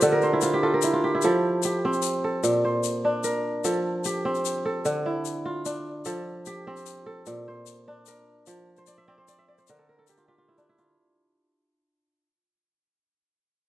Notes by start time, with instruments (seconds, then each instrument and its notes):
Already playing: kora C4 F4 G4 C5 D5 F5
0.01 kora D3 A4, shaker
0.12 kora A#4
0.21 kora C5, shaker
0.33 kora E4
0.41 kora F4, shaker
0.54 kora G4
0.63 kora F4 A4
0.74 kora A#4
0.82 kora E4, shaker
0.93 kora F4
1.04 kora G4
1.15 kora E4
1.22 kora F3 A4, shaker
1.63 kora G4, shaker
1.85 kora C4
1.93 shaker
2.02 shaker
2.24 kora A4
2.43 kora A#2, shaker
2.65 kora C5
2.83 shaker
3.05 kora D4
3.24 kora A#4, shaker
3.65 kora F3 A4, shaker
4.04 kora G4, shaker
4.25 kora C4
4.35 shaker
4.45 shaker
4.65 kora A4
4.85 kora D3, shaker
5.06 kora E4
5.25 shaker
5.45 kora F4
5.66 kora D4, shaker
6.05 kora F3 A4, shaker
6.46 kora G4, shaker
6.67 kora C4
6.76 shaker
6.86 shaker
7.06 kora A4
7.26 kora A#2, shaker
7.48 kora C5
7.66 shaker
7.88 kora D4
8.06 kora A#4, shaker
8.46 kora F3, shaker
8.77 kora C5, shaker
8.87 kora D5, shaker
8.98 kora E5
9.08 kora C4 D5
9.18 kora C5
9.28 kora D5, shaker
9.39 kora E5
9.48 kora D5
9.58 kora C5, shaker
9.67 kora D3 A#4, shaker
9.79 kora A4
9.89 kora A#4
9.99 kora A4
10.07 kora G4, shaker
10.17 kora F4, shaker
10.28 kora F4 G4
10.38 kora F4
10.48 kora E4
10.58 kora D4, shaker
10.69 kora E4
10.78 kora F4, shaker